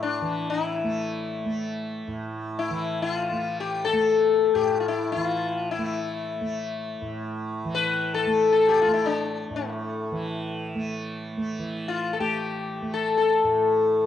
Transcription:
0.00 2.07 A2 medium
0.00 0.21 E3 medium
0.00 0.84 A3 medium
0.00 0.49 D4 medium
0.21 2.69 E3 medium
0.50 2.11 E4 medium
0.84 1.45 A3 medium
1.45 3.32 A3 medium
2.07 4.54 A2 medium
2.59 3.02 E4 medium
2.70 5.15 E3 medium
3.02 3.57 F4 medium
3.32 3.93 A3 soft
3.60 3.86 G4 medium
3.85 4.57 A4 medium
3.93 5.78 A3 medium
4.55 7.01 A2 medium
4.55 4.80 G4 medium
4.80 4.87 F4 medium
4.88 5.12 E4 medium
5.12 7.64 E3 medium
5.12 5.71 F4 medium
5.71 7.21 E4 medium
5.78 6.41 A3 medium
6.41 8.27 A3 medium
7.02 9.50 A2 medium
7.65 10.11 E3 medium
7.75 8.14 B4 medium
8.15 8.51 A4 medium
8.27 8.87 A3 medium
8.53 8.69 A4 medium
8.69 8.81 G4 medium
8.82 8.93 F4 medium
8.87 10.75 A3 medium
8.94 9.06 E4 medium
9.06 9.56 D4 medium
9.50 13.43 A2 medium
9.56 10.93 A3 medium
10.12 11.59 E3 medium
10.75 11.37 A3 medium
11.37 12.20 A3 medium
11.59 14.06 E3 medium
11.88 12.14 F4 medium
12.13 12.20 A4 medium
12.20 12.82 A3 soft
12.20 12.93 G4 medium
12.82 14.06 A3 medium
12.94 13.16 A4 medium
13.18 14.06 A4 medium
13.44 14.06 A2 medium

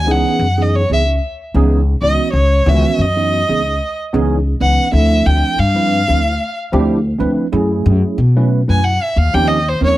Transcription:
0.00 0.12 G#5 medium
0.07 0.22 C#2 loud
0.07 0.45 E3 medium
0.07 0.45 B3 medium
0.07 0.45 C#4 medium
0.07 0.45 D#4 medium
0.07 0.45 G#4 medium
0.11 0.63 F#5 medium
0.39 0.83 F#2 loud
0.57 0.81 E3 medium
0.57 0.81 B3 medium
0.57 0.82 C#4 medium
0.57 0.82 D#4 medium
0.57 0.82 G#4 medium
0.62 0.77 D#5 medium
0.75 0.92 C#5 medium
0.90 1.18 C#2 medium
0.90 1.01 E3 medium
0.90 1.01 B3 medium
0.90 1.01 C#4 medium
0.90 1.02 D#4 medium
0.90 1.02 G#4 medium
0.90 1.01 E5 medium
1.54 1.95 C#2 medium
1.54 1.79 E3 loud
1.54 1.79 B3 loud
1.54 1.79 C#4 medium
1.54 1.79 D#4 loud
1.54 1.80 G#4 loud
1.89 1.95 D#4 soft
1.89 1.95 G#4 soft
2.01 2.17 C#2 medium
2.01 2.28 E3 medium
2.01 2.28 B3 medium
2.01 2.28 C#4 medium
2.01 2.28 D#4 medium
2.01 2.28 F#4 medium
2.01 2.32 D#5 medium
2.33 2.62 C#2 medium
2.33 2.70 C#5 medium
2.66 2.82 C#2 loud
2.66 3.05 D#3 medium
2.66 3.04 E3 medium
2.66 3.04 B3 medium
2.66 3.04 C#4 medium
2.66 3.05 F#4 loud
2.66 3.02 E5 medium
2.98 3.42 F#2 loud
2.98 3.97 D#5 medium
3.16 3.41 E3 medium
3.16 3.41 B3 medium
3.16 3.41 C#4 medium
3.16 3.41 D#4 medium
3.16 3.41 F#4 medium
3.49 3.77 C#2 medium
3.49 3.60 E3 medium
3.49 3.60 B3 medium
3.49 3.60 C#4 medium
3.49 3.60 D#4 medium
3.49 3.60 G#4 medium
4.13 4.54 C#2 medium
4.13 4.38 E3 loud
4.13 4.38 B3 loud
4.13 4.38 C#4 loud
4.13 4.38 D#4 medium
4.13 4.38 G#4 loud
4.46 4.53 D#4 soft
4.46 4.54 G#4 soft
4.60 4.77 C#2 medium
4.60 4.86 E3 medium
4.60 4.87 B3 medium
4.60 4.87 C#4 medium
4.60 4.87 D#4 medium
4.60 4.87 B4 medium
4.60 4.92 F#5 loud
4.92 5.21 D2 medium
4.92 5.58 F3 medium
4.92 5.58 C4 medium
4.92 5.58 D4 medium
4.92 5.58 E4 medium
4.92 5.58 A4 medium
4.92 5.27 E5 medium
5.26 5.42 D2 loud
5.26 5.61 G5 medium
5.58 6.02 G2 loud
5.58 6.56 F5 loud
5.74 6.00 F3 medium
5.74 6.00 C4 medium
5.74 6.00 D4 medium
5.74 6.00 E4 medium
5.74 6.00 B4 medium
6.07 6.37 D2 medium
6.07 6.19 F3 medium
6.07 6.19 C4 medium
6.07 6.19 D4 medium
6.07 6.20 E4 medium
6.07 6.20 A4 medium
6.22 6.31 E4 soft
6.22 6.32 C5 soft
6.72 7.14 D2 loud
6.72 6.97 F3 loud
6.72 6.97 C4 loud
6.72 6.98 D4 loud
6.72 6.98 E4 loud
6.72 6.98 G4 loud
7.04 7.12 E4 soft
7.04 7.13 C5 soft
7.18 7.36 D2 medium
7.18 7.45 F3 medium
7.18 7.46 C4 medium
7.18 7.46 D4 medium
7.18 7.46 E4 medium
7.18 7.46 B4 loud
7.52 7.81 F#2 loud
7.52 8.18 F#3 medium
7.52 8.18 A3 medium
7.52 8.18 C#4 medium
7.52 8.18 E4 medium
7.52 8.18 G#4 medium
7.86 8.01 F#2 loud
8.18 8.62 B2 loud
8.36 8.60 F#3 medium
8.36 8.61 A3 medium
8.36 8.61 C#4 medium
8.36 8.61 E4 medium
8.36 8.61 B4 medium
8.68 8.97 F#2 medium
8.68 8.79 F#3 medium
8.68 8.79 A3 medium
8.68 8.80 C#4 medium
8.68 8.80 E4 medium
8.68 8.80 B4 medium
8.68 8.85 G#5 medium
8.84 9.05 F#5 medium
9.03 9.19 E5 medium
9.16 9.32 D#2 medium
9.16 9.36 F5 medium
9.34 9.75 D#2 loud
9.34 9.58 F3 medium
9.34 9.58 C4 medium
9.34 9.58 C#4 medium
9.34 9.58 D#4 medium
9.34 9.58 G4 loud
9.34 9.49 G5 loud
9.48 9.70 D#5 medium
9.66 9.73 D#4 soft
9.66 9.74 F4 soft
9.66 9.82 C5 medium
9.81 9.97 D#2 medium
9.81 9.98 F3 medium
9.81 9.98 C4 medium
9.81 9.98 C#4 medium
9.81 9.98 D#4 medium
9.81 9.98 A#4 medium
9.81 9.98 C#5 loud

